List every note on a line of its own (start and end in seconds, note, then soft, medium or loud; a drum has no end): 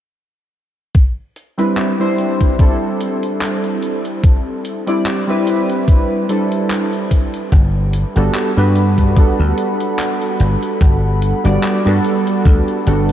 0.95 kick loud
0.95 closed hi-hat medium
1.36 closed hi-hat medium
1.58 1.94 G3 medium
1.58 1.94 C4 medium
1.58 1.94 D4 medium
1.58 1.94 E4 medium
1.58 1.95 B4 loud
1.58 closed hi-hat soft
1.77 clap loud
1.77 closed hi-hat medium
1.99 2.55 G3 medium
1.99 2.55 C4 medium
1.99 2.55 D4 medium
1.99 2.55 E4 medium
1.99 2.56 C5 loud
2.18 closed hi-hat medium
2.41 kick medium
2.41 closed hi-hat medium
2.58 4.82 G3 medium
2.58 4.82 C4 medium
2.58 4.82 D4 medium
2.58 4.83 E4 medium
2.58 4.83 A4 medium
2.58 kick loud
2.58 closed hi-hat medium
3.01 closed hi-hat medium
3.23 closed hi-hat medium
3.41 clap loud
3.41 closed hi-hat medium
3.64 closed hi-hat soft
3.83 closed hi-hat medium
4.05 closed hi-hat medium
4.24 kick loud
4.24 closed hi-hat medium
4.65 closed hi-hat medium
4.87 5.23 G3 medium
4.87 5.23 C4 medium
4.87 5.23 D4 medium
4.87 5.23 E4 medium
4.87 5.23 D5 loud
4.87 closed hi-hat medium
5.06 clap loud
5.06 closed hi-hat medium
5.27 6.24 G3 medium
5.27 6.24 C4 medium
5.27 6.25 D4 medium
5.27 6.25 E4 medium
5.27 6.26 B4 loud
5.47 closed hi-hat medium
5.70 closed hi-hat soft
5.88 kick loud
5.88 closed hi-hat medium
6.29 7.09 G3 medium
6.29 7.09 C4 medium
6.29 7.09 D4 medium
6.29 7.09 E4 medium
6.29 7.10 A4 medium
6.29 closed hi-hat medium
6.52 closed hi-hat medium
6.70 clap loud
6.70 closed hi-hat medium
6.93 closed hi-hat soft
7.11 kick medium
7.11 closed hi-hat medium
7.34 closed hi-hat soft
7.52 8.03 G1 medium
7.52 13.12 A4 medium
7.52 13.12 F#5 medium
7.52 13.12 B5 medium
7.52 kick loud
7.52 closed hi-hat medium
7.93 closed hi-hat medium
8.15 8.28 G1 medium
8.15 8.51 G3 medium
8.15 8.52 B3 medium
8.15 8.52 D4 medium
8.15 8.52 F#4 medium
8.15 8.52 A4 loud
8.15 closed hi-hat medium
8.34 clap loud
8.34 closed hi-hat medium
8.57 9.16 G2 medium
8.57 9.12 G3 medium
8.57 9.12 B3 medium
8.57 9.12 D4 medium
8.57 9.13 F#4 medium
8.57 9.13 B4 loud
8.76 closed hi-hat medium
8.98 kick medium
8.98 closed hi-hat medium
9.15 9.31 D2 loud
9.15 11.39 G3 medium
9.15 11.39 B3 medium
9.15 11.39 D4 medium
9.15 11.40 F#4 medium
9.15 11.40 A4 medium
9.15 kick loud
9.15 closed hi-hat medium
9.39 9.52 D2 medium
9.58 closed hi-hat medium
9.80 closed hi-hat medium
9.99 clap loud
9.99 closed hi-hat medium
10.21 closed hi-hat soft
10.40 10.55 G1 medium
10.40 closed hi-hat medium
10.63 closed hi-hat soft
10.81 11.32 G1 medium
10.81 kick loud
10.81 closed hi-hat medium
11.22 closed hi-hat medium
11.44 11.57 G1 medium
11.44 11.80 G3 medium
11.44 11.80 B3 medium
11.44 11.80 D4 medium
11.44 11.81 F#4 medium
11.44 11.81 D5 loud
11.44 closed hi-hat medium
11.63 clap loud
11.63 closed hi-hat medium
11.84 11.98 G2 medium
11.84 12.81 G3 loud
11.84 12.82 B3 medium
11.84 12.82 D4 medium
11.84 12.83 F#4 medium
11.84 12.83 A4 loud
12.05 closed hi-hat medium
12.27 closed hi-hat soft
12.45 12.60 D2 medium
12.45 kick loud
12.45 closed hi-hat medium
12.68 closed hi-hat soft
12.85 13.12 G1 loud
12.85 13.12 G3 medium
12.85 13.12 B3 medium
12.85 13.12 D4 medium
12.85 13.12 F#4 medium
12.85 13.12 A4 medium
12.85 closed hi-hat medium